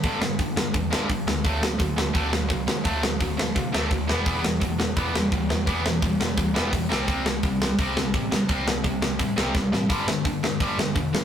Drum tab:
HH |o-o-o-o-|o-o-o-o-|o-o-o-o-|o-o-o-o-|
SD |-o-o-o-o|-o-o-o-o|-o-o-o-o|-o-o-o-o|
BD |o-o-o-o-|o-o-o-o-|o-o-o-o-|o-o-o-o-|

HH |o-o-o-o-|o-o-o-o-|o-o-o---|o-o-o-o-|
SD |-o-o-o-o|-o-o-o-o|-o-o-ooo|-o-o-o-o|
BD |o-o-o-o-|o-o-o-o-|o-o-o-o-|o-o-o-o-|